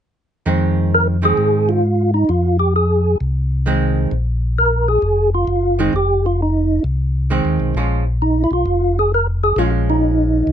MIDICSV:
0, 0, Header, 1, 4, 480
1, 0, Start_track
1, 0, Key_signature, -4, "minor"
1, 0, Tempo, 455235
1, 492, Time_signature, 4, 2, 24, 8
1, 11094, End_track
2, 0, Start_track
2, 0, Title_t, "Tonewheel organ"
2, 0, Program_c, 0, 16
2, 997, Note_on_c, 0, 70, 86
2, 1134, Note_off_c, 0, 70, 0
2, 1321, Note_on_c, 0, 68, 91
2, 1780, Note_on_c, 0, 65, 89
2, 1800, Note_off_c, 0, 68, 0
2, 2223, Note_off_c, 0, 65, 0
2, 2259, Note_on_c, 0, 63, 79
2, 2416, Note_on_c, 0, 65, 81
2, 2424, Note_off_c, 0, 63, 0
2, 2710, Note_off_c, 0, 65, 0
2, 2736, Note_on_c, 0, 67, 77
2, 2887, Note_off_c, 0, 67, 0
2, 2910, Note_on_c, 0, 68, 71
2, 3350, Note_off_c, 0, 68, 0
2, 4834, Note_on_c, 0, 70, 86
2, 5149, Note_on_c, 0, 68, 92
2, 5151, Note_off_c, 0, 70, 0
2, 5588, Note_off_c, 0, 68, 0
2, 5636, Note_on_c, 0, 65, 88
2, 6114, Note_on_c, 0, 63, 78
2, 6119, Note_off_c, 0, 65, 0
2, 6257, Note_off_c, 0, 63, 0
2, 6283, Note_on_c, 0, 67, 85
2, 6595, Note_off_c, 0, 67, 0
2, 6602, Note_on_c, 0, 65, 74
2, 6756, Note_off_c, 0, 65, 0
2, 6773, Note_on_c, 0, 63, 65
2, 7203, Note_off_c, 0, 63, 0
2, 8668, Note_on_c, 0, 63, 75
2, 8886, Note_off_c, 0, 63, 0
2, 8897, Note_on_c, 0, 64, 61
2, 8982, Note_off_c, 0, 64, 0
2, 8996, Note_on_c, 0, 65, 90
2, 9476, Note_off_c, 0, 65, 0
2, 9480, Note_on_c, 0, 68, 83
2, 9618, Note_off_c, 0, 68, 0
2, 9641, Note_on_c, 0, 70, 86
2, 9777, Note_off_c, 0, 70, 0
2, 9948, Note_on_c, 0, 68, 90
2, 10105, Note_on_c, 0, 65, 82
2, 10106, Note_off_c, 0, 68, 0
2, 10244, Note_off_c, 0, 65, 0
2, 10436, Note_on_c, 0, 63, 73
2, 11094, Note_off_c, 0, 63, 0
2, 11094, End_track
3, 0, Start_track
3, 0, Title_t, "Hollow-body jazz guitar"
3, 0, Program_c, 1, 26
3, 484, Note_on_c, 1, 51, 59
3, 493, Note_on_c, 1, 56, 52
3, 496, Note_on_c, 1, 60, 56
3, 1222, Note_off_c, 1, 51, 0
3, 1226, Note_off_c, 1, 56, 0
3, 1228, Note_off_c, 1, 60, 0
3, 1287, Note_on_c, 1, 51, 53
3, 1297, Note_on_c, 1, 56, 53
3, 1298, Note_on_c, 1, 60, 53
3, 1901, Note_off_c, 1, 51, 0
3, 1905, Note_off_c, 1, 56, 0
3, 1906, Note_off_c, 1, 60, 0
3, 3859, Note_on_c, 1, 51, 62
3, 3868, Note_on_c, 1, 56, 68
3, 3873, Note_on_c, 1, 60, 70
3, 4338, Note_off_c, 1, 51, 0
3, 4343, Note_off_c, 1, 56, 0
3, 4345, Note_off_c, 1, 60, 0
3, 6103, Note_on_c, 1, 51, 57
3, 6112, Note_on_c, 1, 56, 66
3, 6118, Note_on_c, 1, 60, 65
3, 6246, Note_off_c, 1, 51, 0
3, 6251, Note_off_c, 1, 56, 0
3, 6253, Note_off_c, 1, 60, 0
3, 7701, Note_on_c, 1, 51, 52
3, 7707, Note_on_c, 1, 56, 61
3, 7714, Note_on_c, 1, 60, 67
3, 8178, Note_off_c, 1, 51, 0
3, 8181, Note_off_c, 1, 56, 0
3, 8184, Note_off_c, 1, 60, 0
3, 8189, Note_on_c, 1, 53, 47
3, 8196, Note_on_c, 1, 56, 51
3, 8201, Note_on_c, 1, 61, 46
3, 8467, Note_off_c, 1, 53, 0
3, 8470, Note_off_c, 1, 56, 0
3, 8472, Note_off_c, 1, 61, 0
3, 10103, Note_on_c, 1, 53, 55
3, 10106, Note_on_c, 1, 56, 57
3, 10113, Note_on_c, 1, 61, 64
3, 11094, Note_off_c, 1, 53, 0
3, 11094, Note_off_c, 1, 56, 0
3, 11094, Note_off_c, 1, 61, 0
3, 11094, End_track
4, 0, Start_track
4, 0, Title_t, "Tonewheel organ"
4, 0, Program_c, 2, 16
4, 488, Note_on_c, 2, 41, 78
4, 1409, Note_off_c, 2, 41, 0
4, 1449, Note_on_c, 2, 44, 77
4, 2370, Note_off_c, 2, 44, 0
4, 2415, Note_on_c, 2, 41, 83
4, 3334, Note_off_c, 2, 41, 0
4, 3379, Note_on_c, 2, 36, 77
4, 4296, Note_off_c, 2, 36, 0
4, 4338, Note_on_c, 2, 34, 84
4, 5256, Note_off_c, 2, 34, 0
4, 5296, Note_on_c, 2, 29, 84
4, 5743, Note_off_c, 2, 29, 0
4, 5773, Note_on_c, 2, 30, 66
4, 6221, Note_off_c, 2, 30, 0
4, 6250, Note_on_c, 2, 29, 82
4, 7171, Note_off_c, 2, 29, 0
4, 7214, Note_on_c, 2, 36, 80
4, 7812, Note_off_c, 2, 36, 0
4, 7853, Note_on_c, 2, 39, 53
4, 8003, Note_off_c, 2, 39, 0
4, 8012, Note_on_c, 2, 35, 55
4, 8162, Note_off_c, 2, 35, 0
4, 8168, Note_on_c, 2, 34, 76
4, 8924, Note_off_c, 2, 34, 0
4, 8970, Note_on_c, 2, 35, 59
4, 9122, Note_off_c, 2, 35, 0
4, 9127, Note_on_c, 2, 29, 76
4, 10046, Note_off_c, 2, 29, 0
4, 10084, Note_on_c, 2, 34, 84
4, 11003, Note_off_c, 2, 34, 0
4, 11041, Note_on_c, 2, 37, 80
4, 11094, Note_off_c, 2, 37, 0
4, 11094, End_track
0, 0, End_of_file